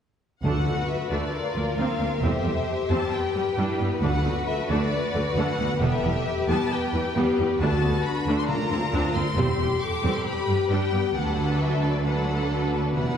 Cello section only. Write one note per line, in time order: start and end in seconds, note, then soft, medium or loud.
0.43 0.51 D2 soft
0.66 0.74 D2 soft
1.11 1.19 D2 soft
1.55 1.63 D2 soft
1.77 1.85 D2 soft
2.00 2.08 D2 soft
2.22 2.30 E2 soft
2.44 2.52 E2 soft
2.90 2.98 E2 soft
3.35 3.43 G2 soft
3.58 3.66 G2 medium
3.80 3.88 G2 soft
4.01 4.09 D2 medium
4.24 4.32 D2 soft
4.69 4.77 D2 medium
5.14 5.22 D2 soft
5.36 5.44 D2 medium
5.59 5.67 D2 soft
5.81 5.89 E2 medium
6.03 6.11 E2 soft
6.48 6.56 E2 medium
6.93 7.01 E2 soft
7.15 7.23 E2 medium
7.37 7.45 E2 soft
7.60 7.68 D2 medium
7.82 7.90 D2 soft
8.26 8.34 D2 medium
8.71 8.79 D2 soft
8.93 9.01 D2 medium
9.15 9.23 D2 soft
9.37 9.45 E2 medium
9.59 9.67 E2 soft
10.03 10.11 E2 medium
10.47 10.55 G2 soft
10.70 10.78 G2 medium
10.92 11.00 G2 soft
11.14 12.90 D2 soft
12.94 13.17 E2 soft